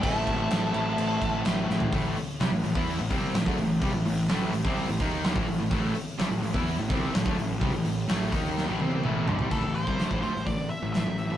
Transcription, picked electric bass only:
X:1
M:4/4
L:1/16
Q:1/4=127
K:Am
V:1 name="Picked electric bass" clef=bass
A,,,2 A,,,2 A,,,2 A,,,2 A,,,2 A,,,2 A,,,2 A,,,2 | A,,,2 z2 C,, A,,, A,,, E,,2 A,,, C,,2 A,,, D,, A,,,2 | C,, A,,, A,,,2 A,,,2 A,,, C,,2 A,,, ^D,,3 A,,, A,,, A,,, | A,,,2 z2 C,, A,,, A,,, E,,2 A,,, C,,2 A,,, D,, A,,,2 |
C,, A,,, A,,,2 A,,,2 ^D,,3 A,,, C,,2 A,,,2 G,,, C,, | A,,, A,,,2 C,, D,, A,,, D,, A,,, A,,,2 z A,,,2 A,,,2 A,,, |]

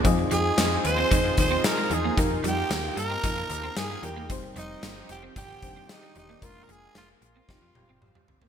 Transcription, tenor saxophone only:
X:1
M:4/4
L:1/16
Q:1/4=113
K:Fdor
V:1 name="Tenor saxophone"
z2 A4 c4 c2 B2 A2 | z2 G4 B6 A2 G2 | z2 E4 G2 G4 E2 E2 | F3/2 B/2 A2 F2 F8 z2 |]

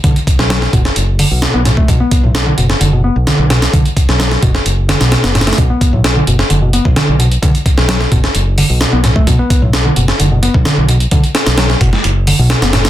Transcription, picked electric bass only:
X:1
M:4/4
L:1/16
Q:1/4=130
K:Bm
V:1 name="Picked electric bass" clef=bass
D, z3 F, z B,, z3 D, B,,2 B, A,, A, | B,, B,2 A,, z D, B,, z D, B,, B, z D,2 B,, z | D, z3 F, z B,, z3 D, B,,2 B, A,, A, | B,, B,2 A,, z D, B,, z D, B,, B, z D,2 B,, z |
D, z3 F, z B,, z3 D, B,,2 B, A,, A, | B,, B,2 A,, z D, B,, z D, B,, B, z D,2 B,, z | D, z3 F, z B,, z3 D, B,,2 B, A,, A, |]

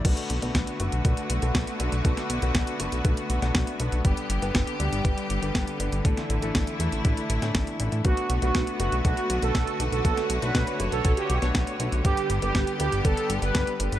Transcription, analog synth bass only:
X:1
M:4/4
L:1/16
Q:1/4=120
K:Bm
V:1 name="Analog synth bass" clef=bass
B,,, z B,,, B,,, B,,, z F,,, B,,, B,,, z B,,, B,,, B,,, z B,,, B,,, | B,,, z B,,, B,,, B,,, z F,,, B,,, B,,, z B,,, B,,, B,,, z B,,, B,,, | G,,, z G,,, G,,, G,,, z D,, G,,, G,,, z G,,, G,,, G,,, z G,,, G,,, | A,,, z A,,, A,,, A,,, z E,, A,,, A,,, z A,,, A,, A,,, z A,,, A,, |
B,,, z B,,, B,,, B,,, z F,,, B,,, B,,, z B,,, B,,, B,,, z B,,, B,,, | B,,, z B,,, B,,, B,,, z F,,, B,,, B,,, z B,,, B,,, B,,, z B,,, B,,, | G,,, z G,,, G,,, G,,, z D,, G,,, G,,, z G,,, G,,, G,,, z G,,, G,,, |]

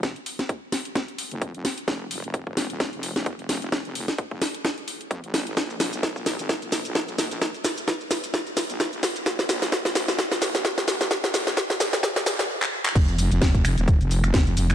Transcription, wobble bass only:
X:1
M:4/4
L:1/16
Q:"Swing 16ths" 1/4=130
K:Fm
V:1 name="Wobble bass" clef=bass
F,,, z8 z2 F,,,3 z2 | F,,,3 F,,,4 E,,,2 F,,,3 F,,,2 F,,,2- | F,,, F,,,2 z2 F,,, z6 F,, A,,,3 | B,,,3 B,,,4 A,,,2 B,,,3 B,,,2 B,,,2- |
B,,, z8 z2 B,,,3 z2 | B,,,3 B,,,4 A,,,2 B,,,3 B,,,2 B,,,2- | B,,, B,,,3 z2 B,,,2 B,,,2 B,,,2 z4 | F,,,3 F,,,4 E,,,2 F,,,3 F,,,2 F,,,2 |]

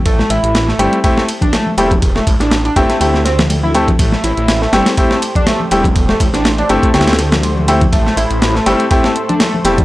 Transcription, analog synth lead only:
X:1
M:4/4
L:1/16
Q:"Swing 16ths" 1/4=122
K:Am
V:1 name="Analog synth lead"
A, A, E3 A, G, z2 A, z D A, z G, z | z A, z D z D z A, z2 C z2 E A, z | A, A, E3 A, G, z2 A, z D A, z G, z | z A, z D z D z A, z8 |
A, A, E3 A, G, z2 A, z D A, z G, z |]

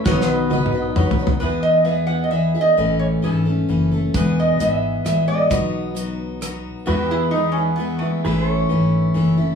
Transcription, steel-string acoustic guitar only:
X:1
M:3/4
L:1/8
Q:1/4=132
K:E
V:1 name="Steel-string acoustic guitar"
[B,,D,F,B,DB]2 [F,B,DB] [F,B,DB] [F,B,DB] [F,B,DB] | [E,,B,,E,B,EG]2 [E,B,EG] [E,B,EG] [E,B,EG] [E,B,EG] | [A,,E,A,CA]2 [E,A,CA] [A,CA] [E,A,CA] [A,CA] | [E,,B,,E,G,B,G]2 [E,G,B,G]2 [E,G,B,G] [E,G,B,G] |
[B,,F,B,DF]2 [F,B,DF]2 [F,B,DF]2 | [E,,B,,E,G,B,E]2 [E,G,B,E] [E,G,B,E] [E,G,B,E] [E,G,B,E] | [A,,E,A,CE]2 [E,A,CE]2 [E,A,CE] [A,CE] |]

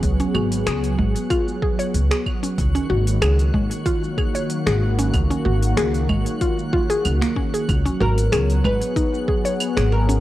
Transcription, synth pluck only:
X:1
M:4/4
L:1/16
Q:"Swing 16ths" 1/4=94
K:Gb
V:1 name="Synth pluck"
D D G z A z A, z F z A d z A z D | z D G z A z A, z F z A d z A z D- | D D G z A z A, z F z F A z B, D A | z D G z A z A, z E2 A d z A z D |]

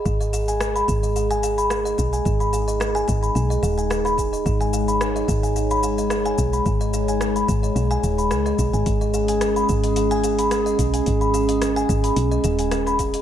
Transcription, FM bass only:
X:1
M:4/4
L:1/16
Q:"Swing 16ths" 1/4=109
K:G#m
V:1 name="FM bass" clef=bass
G,,,6 G,,,8 B,,,2 | G,,,6 G,,,2 B,,,2 D,,,6 | G,,,6 G,,,8 B,,,2 | G,,,6 G,,,2 B,,,2 D,,,2 C,,2 B,,, G,,, |
G,,,6 G,,,8 B,,,2 | G,,,6 G,,,2 B,,,2 D,,,6 |]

